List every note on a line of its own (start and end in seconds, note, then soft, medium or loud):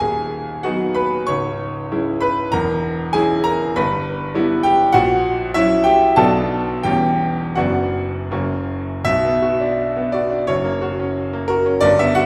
0.00 1.25 D#1 soft
0.00 1.25 D#2 medium
0.00 0.60 G#4 medium
0.00 0.64 G#5 medium
0.63 1.25 F#3 soft
0.63 1.25 B3 soft
0.63 1.25 D#4 medium
0.63 0.94 F#4 medium
0.63 0.96 F#5 medium
0.95 1.26 B4 medium
0.95 1.28 B5 medium
1.27 2.49 C#1 medium
1.27 2.49 C#2 medium
1.27 2.17 C#5 medium
1.27 2.21 C#6 loud
1.92 2.49 G#3 medium
1.92 2.49 C#4 soft
1.92 2.49 E4 medium
2.21 2.51 B4 medium
2.21 2.52 B5 medium
2.52 3.71 E1 medium
2.52 3.71 E2 medium
2.52 3.10 A#4 medium
2.52 3.13 A#5 loud
3.13 3.71 G#3 medium
3.13 3.71 C#4 medium
3.13 3.71 E4 medium
3.13 3.42 G#4 medium
3.13 3.44 G#5 loud
3.44 3.73 A#4 medium
3.44 3.75 A#5 loud
3.76 4.90 G1 medium
3.76 4.89 G2 medium
3.76 4.60 B4 medium
3.76 4.63 B5 medium
4.35 4.88 G3 medium
4.35 4.89 B3 medium
4.35 4.89 E4 medium
4.63 4.91 G4 medium
4.63 4.92 G5 loud
4.93 6.13 A#1 medium
4.93 6.13 A#2 medium
4.93 5.50 F#4 medium
4.93 5.53 F#5 loud
5.54 6.13 F#3 medium
5.54 6.14 C#4 medium
5.54 5.83 E4 medium
5.54 5.85 E5 loud
5.84 6.15 G4 medium
5.84 6.16 G5 loud
6.16 6.82 B1 medium
6.16 6.82 B2 medium
6.16 6.80 F#3 medium
6.16 6.80 B3 medium
6.16 6.81 D4 medium
6.16 6.80 A4 medium
6.16 6.84 A5 loud
6.83 7.55 E1 medium
6.83 7.56 E2 medium
6.83 7.54 G3 medium
6.83 7.54 C#4 medium
6.83 7.54 G4 medium
6.83 7.57 G5 loud
7.55 8.29 F#1 medium
7.55 8.30 F#2 medium
7.55 8.28 B3 soft
7.55 8.28 D4 soft
7.55 8.28 F#4 medium
7.55 8.31 F#5 medium
8.31 9.04 F#1 medium
8.31 9.04 F#2 medium
8.31 9.02 A#3 soft
8.31 9.02 C#4 soft
8.31 9.02 F#4 soft
9.04 10.43 B1 medium
9.04 10.44 B2 medium
9.04 10.13 E5 loud
9.25 9.54 B3 medium
9.42 9.71 F#4 medium
9.60 10.17 D4 medium
9.97 10.24 B3 soft
10.12 10.41 F#4 soft
10.12 10.47 D5 medium
10.31 10.48 D4 medium
10.47 11.79 F#1 medium
10.47 11.79 F#2 medium
10.47 11.49 C#5 loud
10.64 10.92 A#3 medium
10.82 11.09 F#4 medium
10.99 11.53 C#4 medium
11.33 11.60 A#3 medium
11.48 11.76 F#4 medium
11.48 11.82 A#4 loud
11.66 11.83 C#4 medium
11.81 12.26 G1 medium
11.81 12.26 G2 medium
11.81 11.99 D5 loud
11.99 12.26 B3 medium
11.99 12.17 E5 loud
12.15 12.26 F#4 medium
12.15 12.26 F#5 loud